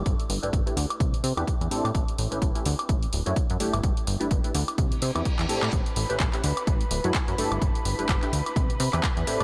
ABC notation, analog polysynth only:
X:1
M:4/4
L:1/16
Q:"Swing 16ths" 1/4=127
K:Glyd
V:1 name="Analog polysynth"
z3 [A,DEGB] z [A,DEGB] z4 z [=CDEGB] z2 [CDEGA] z | z3 [A,CEGB] z [A,CEGB] z4 z [A,DEFc] z2 [A,DEGA] z | z3 [A,DEGB] z [A,DEGB] z4 z [=CDEGB] z2 [CDEGA] z | z3 [A,CEGB] z [A,CEGB] z4 z [A,DEFc] z2 [A,DEGA] z |
z3 [A,DEGB] z [A,DEGB] z4 z [=CDEGB] z2 [CDEGA] z |]